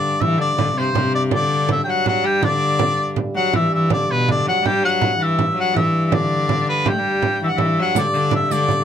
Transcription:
Already playing: harmonium G2, viola da gamba D3, shawm D5
0.21 viola da gamba E3, shawm E5, frame drum
0.38 viola da gamba D3, shawm D5
0.57 viola da gamba D3, frame drum
0.75 viola da gamba C3, shawm C5
0.94 viola da gamba C3, frame drum
1.15 shawm D5
1.31 viola da gamba D3, shawm D5, frame drum
1.69 shawm E5, frame drum
1.84 viola da gamba F#3, shawm G5
1.89 shawm F#5
2.06 shawm F#5, frame drum
2.24 viola da gamba G3, shawm G5
2.42 viola da gamba D3, shawm D5, frame drum
2.79 frame drum
3.16 frame drum
3.36 viola da gamba F#3, shawm F#5
3.53 harmonium G2, viola da gamba E3, shawm E5, frame drum
3.74 viola da gamba E3, shawm E5
3.90 viola da gamba D3, shawm D5, frame drum
4.11 viola da gamba B2, shawm B4
4.29 viola da gamba D3, shawm D5, frame drum
4.46 viola da gamba F#3, shawm F#5, frame drum
4.65 viola da gamba G3, shawm G5, frame drum
4.84 viola da gamba F#3, shawm F#5
5.02 frame drum
5.19 viola da gamba E3
5.23 shawm E5
5.39 frame drum
5.56 viola da gamba F#3, frame drum
5.61 shawm F#5
5.74 viola da gamba E3, shawm E5, frame drum
6.06 shawm E5
6.11 viola da gamba D3, shawm D5, frame drum
6.49 frame drum
6.68 shawm B4, frame drum
6.85 viola da gamba G3, shawm G5, frame drum
6.92 viola da gamba A3
6.99 viola da gamba G3
7.05 frame drum
7.22 frame drum
7.42 viola da gamba E3, shawm E5, frame drum
7.47 shawm F#5
7.54 viola da gamba E3, shawm E5
7.58 frame drum
7.77 viola da gamba F#3, frame drum
7.81 shawm F#5
7.95 harmonium G2, viola da gamba D3, shawm D5, riq, frame drum
8.13 viola da gamba D3, riq
8.31 frame drum
8.35 shawm E5
8.50 viola da gamba D3, shawm D5, riq, frame drum
8.68 riq, frame drum

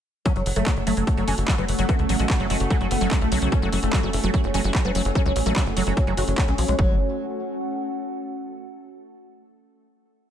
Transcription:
0.26 acid bass F#3, synth texture A3 A4, ambient pad C#4, oud C#4, kick, closed hi-hat
0.36 analog synth bass F#1, acid bass F#3, oud F#3, closed hi-hat
0.46 analog synth bass F#1, oud F#3, ambient pad F#4, open hi-hat
0.56 analog synth bass F#1, acid bass F#3, oud A3, closed hi-hat
0.66 acid bass F#3, oud F#3, kick, clap, closed hi-hat
0.77 analog synth bass F#1, oud F#3, closed hi-hat
0.87 analog synth bass F#1, acid bass F#3, oud A3, open hi-hat
0.97 analog synth bass F#1, acid bass F#3, oud F#3, ambient pad F#5, closed hi-hat
1.07 oud F#3, kick, closed hi-hat
1.17 analog synth bass F#1, acid bass F#3, oud F#3, closed hi-hat
1.28 analog synth bass F#1, acid bass F#3, oud C#4, open hi-hat
1.38 analog synth bass F#1, oud F#3, closed hi-hat
1.48 oud F#3, acid bass F#3, kick, clap, closed hi-hat
1.58 analog synth bass F#1, acid bass F#3, oud B3, closed hi-hat
1.68 analog synth bass F#1, oud F#3, open hi-hat
1.79 analog synth bass F#1, oud F#3, acid bass F#3, closed hi-hat
1.89 oud B3, kick, closed hi-hat
1.99 analog synth bass C#2, oud C#3, closed hi-hat
2.09 analog synth bass A1, oud C#3, acid bass F#3, open hi-hat
2.19 analog synth bass A1, acid bass F#3, oud G#3, closed hi-hat
2.30 oud C#3, kick, clap, closed hi-hat
2.40 analog synth bass F#1, oud C#3, acid bass F#3, closed hi-hat
2.50 analog synth bass F#1, acid bass F#3, oud G#3, open hi-hat
2.60 analog synth bass F#1, oud C#3, closed hi-hat
2.70 oud C#3, acid bass F#3, kick, closed hi-hat
2.81 analog synth bass F#1, oud C#3, acid bass F#3, closed hi-hat
2.91 analog synth bass F#1, oud B3, open hi-hat
3.01 analog synth bass F#1, oud C#3, acid bass F#3, closed hi-hat
3.11 oud C#3, acid bass F#3, kick, clap, closed hi-hat
3.21 analog synth bass B1, oud A3, closed hi-hat
3.32 analog synth bass B1, oud C#3, acid bass F#3, open hi-hat
3.42 analog synth bass B1, oud C#3, acid bass F#3, closed hi-hat
3.52 oud C#4, kick, closed hi-hat
3.62 analog synth bass F#1, oud F#3, acid bass F#3, closed hi-hat
3.73 analog synth bass F#1, acid bass F#3, oud F#3, open hi-hat
3.83 analog synth bass F#1, oud A3, closed hi-hat
3.93 acid bass F#3, oud F#3, kick, clap, closed hi-hat
4.03 analog synth bass F#1, acid bass F#3, oud F#3, closed hi-hat
4.13 analog synth bass F#1, oud A3, ambient pad G#5, open hi-hat
4.23 analog synth bass F#1, acid bass F#3, oud F#3, closed hi-hat
4.34 acid bass F#3, oud F#3, kick, closed hi-hat
4.44 analog synth bass F#1, oud F#3, closed hi-hat
4.54 analog synth bass F#1, acid bass F#3, oud C#4, open hi-hat
4.64 analog synth bass F#1, acid bass F#3, oud F#3, closed hi-hat
4.75 oud F#3, kick, clap, closed hi-hat
4.85 analog synth bass F#1, acid bass F#3, oud B3, closed hi-hat
4.95 analog synth bass F#1, oud F#3, acid bass F#3, open hi-hat
5.05 analog synth bass F#1, oud F#3, closed hi-hat
5.15 acid bass F#3, oud C#4, kick, closed hi-hat
5.26 analog synth bass C#2, acid bass F#3, oud F#3, closed hi-hat
5.36 analog synth bass A1, oud F#3, open hi-hat
5.46 analog synth bass A1, acid bass F#3, oud A3, closed hi-hat
5.56 oud F#3, acid bass F#3, kick, clap, closed hi-hat
5.66 analog synth bass F#1, oud F#3, closed hi-hat
5.77 analog synth bass F#1, acid bass F#3, oud F#3, open hi-hat
5.87 analog synth bass F#1, oud F#3, acid bass F#3, closed hi-hat
5.97 oud F#3, kick, closed hi-hat
6.07 analog synth bass F#1, oud F#3, acid bass F#3, closed hi-hat
6.17 analog synth bass F#1, oud F#3, acid bass F#4, open hi-hat
6.28 analog synth bass F#1, oud F#3, closed hi-hat
6.38 acid bass F#3, oud F#3, kick, clap, closed hi-hat
6.48 analog synth bass B1, oud F#3, acid bass C#4, closed hi-hat
6.58 analog synth bass B1, acid bass F3, oud F#3, open hi-hat
6.68 analog synth bass B1, oud F#3, acid bass G#3, closed hi-hat
6.79 analog synth bass F#1, acid bass F#3, oud F#3, ambient pad C#4, kick
6.85 ambient pad F#4
6.91 ambient pad F#5

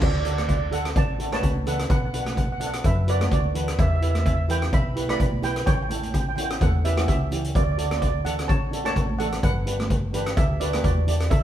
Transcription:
0.02 fingered electric bass D2, steel pan F#4 D5, kick, crash, low conga
0.11 steel pan D5
0.19 steel pan D5
0.24 steel pan D4 F#4 A4 D5, closed hi-hat
0.34 steel pan D5
0.38 steel pan D5, cross-stick, closed hi-hat, high conga
0.48 steel pan D5, kick, closed hi-hat
0.57 steel pan D5
0.71 steel pan D4 F#4 A4 F#5, closed hi-hat, low conga
0.85 cross-stick, closed hi-hat
0.96 fingered electric bass A1, steel pan D5 A5, kick, closed hi-hat
1.19 steel pan D4 F#4 A4, closed hi-hat
1.31 steel pan D4 F#4 B4 C#5 A5, cross-stick, closed hi-hat, high conga
1.43 fingered electric bass C#2, kick, closed hi-hat
1.55 high conga
1.66 steel pan D4 F#4 A4 B4 F#5, closed hi-hat, low conga
1.79 cross-stick, closed hi-hat
1.90 fingered electric bass B1, steel pan B4 F#5, kick, closed hi-hat, low conga
1.97 steel pan F#5
2.05 steel pan F#5
2.13 steel pan D4 F#4 B4 F#5, closed hi-hat
2.22 steel pan F#5, cross-stick, closed hi-hat, high conga
2.30 steel pan F#5
2.37 steel pan F#5, kick, closed hi-hat
2.44 steel pan F#5
2.52 steel pan F#5
2.60 steel pan D4 F#4 A4 F#5, closed hi-hat, low conga
2.67 steel pan F#5
2.73 cross-stick, closed hi-hat
2.84 fingered electric bass F#2, steel pan B4 E5, kick, closed hi-hat
3.07 steel pan D4 F#4 B4 D5, closed hi-hat
3.20 steel pan D4 F#4 C#5, cross-stick, closed hi-hat, high conga
3.31 fingered electric bass D2, steel pan F#4 D5, kick, closed hi-hat
3.44 high conga
3.54 steel pan D4 F#4 B4, closed hi-hat, low conga
3.68 cross-stick, closed hi-hat
3.79 fingered electric bass E2, steel pan G4 E5, kick, closed hi-hat, low conga
3.88 steel pan E5
3.96 steel pan E5
4.01 steel pan E4 G4 B4 E5, closed hi-hat
4.11 steel pan E5, high conga
4.15 steel pan E5, cross-stick, closed hi-hat
4.26 steel pan E5, kick, closed hi-hat
4.33 steel pan E5
4.48 steel pan E4 G4 B4 G5, closed hi-hat, low conga
4.62 cross-stick, closed hi-hat
4.73 fingered electric bass B1, steel pan E5 B5, kick, closed hi-hat
4.95 steel pan E4 G4 B4, closed hi-hat
5.07 steel pan E4 G4 B4 D5 B5, cross-stick, closed hi-hat, high conga
5.20 fingered electric bass B1, kick, closed hi-hat
5.32 high conga
5.42 steel pan E4 G4 B4 G5, closed hi-hat, low conga
5.56 cross-stick, closed hi-hat
5.66 fingered electric bass A1, steel pan C#5 G5, kick, closed hi-hat, low conga
5.74 steel pan G5
5.83 steel pan G5
5.89 steel pan C#4 E4 A4 G5, closed hi-hat, high conga
5.97 steel pan G5
6.02 steel pan G5, closed hi-hat, high conga
6.12 steel pan G5, kick, closed hi-hat
6.20 steel pan G5
6.29 steel pan G5
6.36 steel pan C#4 E4 F#4 G5, closed hi-hat, low conga
6.44 steel pan G5
6.50 cross-stick, closed hi-hat
6.60 fingered electric bass E2, steel pan A4 F#5, kick, closed hi-hat, high conga
6.84 steel pan C#4 E4 G4 B4 E5, closed hi-hat
6.96 steel pan C#4 E4 F#4, cross-stick, closed hi-hat, high conga
7.08 fingered electric bass C#2, steel pan G4 E5, kick, closed hi-hat
7.31 steel pan C#4 E4 G4, closed hi-hat, low conga
7.44 closed hi-hat
7.55 fingered electric bass D2, steel pan F#4 D5, kick, closed hi-hat, low conga
7.63 steel pan D5
7.71 steel pan D5
7.77 steel pan D4 F#4 A4 D5, closed hi-hat
7.86 steel pan D5
7.91 steel pan D5, cross-stick, closed hi-hat, high conga
8.00 steel pan D5, kick, closed hi-hat
8.08 steel pan D5
8.24 steel pan D4 F#4 A4 F#5, closed hi-hat, low conga
8.39 cross-stick, closed hi-hat
8.48 fingered electric bass A1, steel pan C#5 A5, kick, closed hi-hat
8.71 steel pan D4 F#4 A4, closed hi-hat
8.84 steel pan D4 F#4 A4 C#5 A5, cross-stick, closed hi-hat, high conga
8.96 fingered electric bass A1, kick, closed hi-hat
9.09 high conga
9.19 steel pan D4 F#4 A4 F#5, closed hi-hat, low conga
9.32 cross-stick, closed hi-hat
9.43 fingered electric bass G1, steel pan B4 F#5, kick, closed hi-hat, low conga
9.66 steel pan D4 G4 B4, closed hi-hat
9.79 cross-stick, closed hi-hat, high conga
9.90 kick, closed hi-hat
10.13 steel pan D4 G4 B4, closed hi-hat, low conga
10.26 cross-stick, closed hi-hat
10.37 fingered electric bass D2, steel pan G4 E5, kick, closed hi-hat
10.60 steel pan D4 F#4 G4 B4 D5, closed hi-hat
10.73 steel pan D4 G4 B4, cross-stick, closed hi-hat, high conga
10.83 fingered electric bass E2, steel pan F#4 D5, kick, closed hi-hat
10.97 high conga
11.07 steel pan D4 G4 D5, closed hi-hat, low conga
11.20 cross-stick, closed hi-hat
11.30 fingered electric bass A1, steel pan A4 E5, kick, closed hi-hat, low conga
11.39 steel pan E5

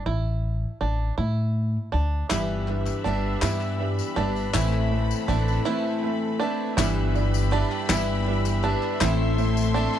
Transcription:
0.06 upright bass A1, five-string banjo E4
0.81 upright bass A1, five-string banjo D4
1.18 upright bass A2, five-string banjo E4
1.92 upright bass D2, five-string banjo D4
2.29 upright piano G1 G2 G3 D4 B4 E5, upright bass G1, twelve-string acoustic guitar G2 E3 G3 B3 D4 B4, five-string banjo E4, string section G4 E5 B5, clap, tambourine
2.68 upright piano G3 D4 B4 E5, clap
2.86 clap, tambourine
3.04 upright bass G1, upright piano G3 D4 B4 E5, twelve-string acoustic guitar G3 B3 D4 B4, five-string banjo D4
3.42 upright bass G2, twelve-string acoustic guitar G2 E3 G3 B3 D4 B4, upright piano G3 D4 B4 E5, five-string banjo E4, clap, tambourine
3.61 clap, tambourine
3.79 upright piano G3 D4 B4 E5
3.99 tambourine
4.16 upright bass G1, upright piano G3 D4 B4 E5, twelve-string acoustic guitar G3 B3 D4 B4, five-string banjo D4, clap
4.36 tambourine
4.53 upright bass A1, upright piano A1 A2 A3 C4 B4 E5, twelve-string acoustic guitar A2 E3 A3 C4 E4 B4, string section C4 A4, five-string banjo E4, clap, tambourine
4.73 clap
4.91 upright piano A3 C4 B4 E5
5.11 tambourine
5.28 upright bass A1, upright piano A3 C4 B4 E5, twelve-string acoustic guitar A3 C4 E4 B4, five-string banjo D4, tambourine
5.48 tambourine
5.65 twelve-string acoustic guitar A2 E3 A3 C4 E4 B4, upright piano A3 C4 B4 E5, five-string banjo E4
6.03 upright piano A3 C4 B4 E5
6.40 upright piano A3 C4 B4 E5, twelve-string acoustic guitar A3 C4 E4 B4, five-string banjo D4
6.77 upright piano G1 G2 G3 D4 E4 B4 E5, upright bass G1, twelve-string acoustic guitar G2 E3 G3 B3 D4 B4, five-string banjo E4, string section G4 E5 B5, clap, tambourine
7.14 upright piano G3 D4 E4 B4 D5, tambourine
7.34 tambourine
7.51 twelve-string acoustic guitar G3 B3 D4 B4, upright piano G3 D4 E4 B4 E5, five-string banjo D4
7.72 clap
7.89 upright bass G1, twelve-string acoustic guitar G2 E3 G3 B3 D4 B4, upright piano G3 D4 E4 B4 E5, five-string banjo E4, clap, tambourine
8.27 upright piano G3 D4 E4 B4 E5
8.45 clap, tambourine
8.63 upright piano G3 D4 E4 B4 E5, twelve-string acoustic guitar G3 B3 D4 B4, five-string banjo D4
8.83 clap
9.00 upright piano A1 A2 A3 C4 E4 C5 E5, upright bass A1, twelve-string acoustic guitar A2 E3 A3 C4 E4 A4, five-string banjo E4, string section A4 C6, clap, tambourine
9.37 upright piano A3 C4 E4 C5 E5, tambourine
9.57 tambourine
9.74 upright piano A3 C4 E4 C5 E5, twelve-string acoustic guitar A3 C4 E4 A4, five-string banjo D4
9.94 clap

